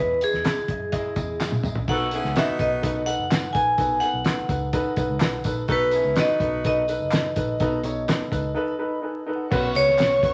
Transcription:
Already playing: picked electric bass E2, upright piano E4, vibraphone B4
0.00 upright piano E3 G#4 D#5
0.21 upright piano E4 G#4 D#5, vibraphone G#4, closed hi-hat, tambourine
0.33 picked electric bass E2, snare
0.44 upright piano E4 G#4 D#5, snare, clap, closed hi-hat, tambourine
0.58 muted picked electric bass stroke
0.68 picked electric bass F#2, upright piano E4 G#4 D#5, kick, closed hi-hat
0.92 upright piano E4 G#4 D#5, kick, closed hi-hat, tambourine
1.16 picked electric bass E2, upright piano E4 G#4 D#5, kick, closed hi-hat, tambourine
1.40 picked electric bass F#2, upright piano E4 G#4 D#5, snare, clap, tambourine
1.52 high tom
1.63 picked electric bass A#1, upright piano E4 G#4 D#5, mid tom, tambourine
1.75 floor tom
1.88 picked electric bass B1, upright piano B2 D#4 A4 B4, saxophone section D#4 F#4 A4, vibraphone F#5, kick, tambourine, crash
2.11 saxophone section C#4 E4 G#4, upright piano D#4 A4 B4, closed hi-hat, tambourine
2.24 picked electric bass C#2, snare
2.36 saxophone section B3 D#4 F#4, upright piano D#4 A4 B4, vibraphone E5, snare, clap, closed hi-hat, tambourine
2.49 muted picked electric bass stroke
2.58 picked electric bass B1, upright piano D#4 A4 B4, vibraphone D#5, kick, closed hi-hat
2.82 picked electric bass B1, upright piano D#4 A4 B4, kick, closed hi-hat, tambourine
3.06 upright piano D#4 A4 B4, vibraphone F#5, closed hi-hat, tambourine
3.19 picked electric bass F#1
3.30 upright piano D#4 A4 B4, snare, clap, closed hi-hat, tambourine
3.53 picked electric bass A#1, upright piano D#4 A4 B4, vibraphone G#5, kick, closed hi-hat, tambourine
3.77 picked electric bass B1, upright piano B2 D#4 A4 B4, kick, closed hi-hat, tambourine
4.00 upright piano D#4 A4 B4, vibraphone F#5, closed hi-hat, tambourine
4.14 picked electric bass B1
4.25 upright piano D#4 A4 B4, snare, clap, closed hi-hat, tambourine
4.38 muted picked electric bass stroke
4.49 picked electric bass C#2, upright piano D#4 A4 B4, kick, closed hi-hat, tambourine
4.73 upright piano D#4 A4 B4, kick, closed hi-hat, tambourine
4.96 picked electric bass B1, upright piano D#4 A4 B4, kick, closed hi-hat, tambourine
5.10 picked electric bass C#2
5.20 picked electric bass B1, upright piano D#4 A4 B4, snare, clap, closed hi-hat, tambourine
5.44 picked electric bass A#1, upright piano D#4 A4 B4, kick, closed hi-hat, tambourine
5.68 picked electric bass B1, upright piano B2 D#4 A4 B4, saxophone section D#4 F#4 A4, vibraphone B4, kick, closed hi-hat, tambourine
5.91 saxophone section C#4 E4 G#4, upright piano D#4 A4 B4, closed hi-hat, tambourine
6.05 picked electric bass C#2
6.16 saxophone section B3 D#4 F#4, upright piano D#4 A4 B4, vibraphone D#5, snare, clap, closed hi-hat, tambourine
6.28 muted picked electric bass stroke
6.40 picked electric bass B1, upright piano D#4 A4 B4, kick, closed hi-hat
6.64 picked electric bass B1, upright piano D#4 A4 B4, vibraphone D#5, kick, closed hi-hat, tambourine
6.88 upright piano D#4 A4 B4, closed hi-hat, tambourine
7.00 picked electric bass F#1
7.11 upright piano D#4 A4 B4, snare, clap, closed hi-hat, tambourine
7.36 picked electric bass A#1, upright piano D#4 A4 B4, kick, closed hi-hat, tambourine
7.60 picked electric bass B1, upright piano B2 D#4 A4 B4, kick, closed hi-hat, tambourine
7.83 picked electric bass B1, upright piano D#4 A4 C#5, closed hi-hat, tambourine
8.08 upright piano D#4 A4 B4, snare, clap, closed hi-hat, tambourine
8.18 muted picked electric bass stroke
8.31 picked electric bass C#2, upright piano D#4 A4 B4, kick, closed hi-hat, tambourine
8.55 upright piano D#4 A4 B4
8.79 upright piano D#4 A4 B4 B5
9.02 upright piano D#4 A4 B4 G#5
9.26 upright piano D#4 A4 B4
9.35 upright piano F#5
9.51 picked electric bass B1, upright piano B2 C#4 F#4 B4, string section C#5 C#6, kick, crash, tambourine
9.75 picked electric bass C#2, upright piano C#4 F#4 B4, vibraphone C#5, closed hi-hat, tambourine
9.89 snare
9.98 picked electric bass B1, upright piano C#4 F#4 B4, snare, clap, closed hi-hat, tambourine
10.22 picked electric bass D#2, upright piano C#4 F#4 B4, kick, closed hi-hat, tambourine

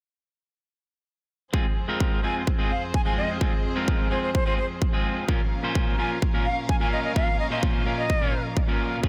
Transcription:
1.53 string section F2 F3 C4 G#4 C5, clean electric guitar G#3 C4 F4 G#4, kick
1.88 clean electric guitar G#3 C4 F4 A#4
2.00 kick
2.23 clean electric guitar G#3 C4 F4 G#4, flute G#5
2.47 kick
2.58 clean electric guitar G#3 C4 F4 G#4
2.71 flute F5
2.94 flute G#5, kick
3.05 clean electric guitar G#3 C4 F4 G#4, flute G#5
3.18 flute D#5
3.40 clean electric guitar G#3 C4 F4 G#4, kick
3.76 clean electric guitar G#3 C4 F4 A#4
3.88 kick
4.11 clean electric guitar G#3 C4 F4 G#4, flute C5
4.23 flute C5
4.35 flute C5, kick
4.46 clean electric guitar G#3 C4 F4 G#4, flute C5
4.58 flute C5
4.82 kick
4.93 clean electric guitar G#3 C4 F4 G#4
5.28 clean electric guitar A#2 A#3 C#4 F4 A#4, string section A#2 C#4 A#4 F5, kick
5.63 clean electric guitar A#2 A#3 C#4 F4 C5
5.75 kick
5.98 clean electric guitar A#2 A#3 C#4 F4 A#4, flute G#5
6.22 kick
6.33 clean electric guitar A#2 A#3 C#4 F4 A#4
6.46 flute F5
6.69 flute G#5, kick
6.80 clean electric guitar A#2 A#3 C#4 F4 A#4, flute G#5
6.93 flute D#5
7.04 flute D#5
7.15 clean electric guitar A#2 A#3 C#4 F4 A#4, flute F5, kick
7.39 flute D#5
7.50 clean electric guitar A#2 A#3 C#4 F4 C5, flute D#5
7.63 kick
7.86 clean electric guitar A#2 A#3 C#4 F4 A#4
7.98 flute D#5
8.10 kick
8.21 clean electric guitar A#2 A#3 C#4 F4 A#4
8.57 kick
8.68 clean electric guitar A#2 A#3 C#4 F4 A#4
9.03 string section C#2 C#3 G#3 F4 G#4, clean electric guitar C#3 G#3 C#4 F4 G#4, kick

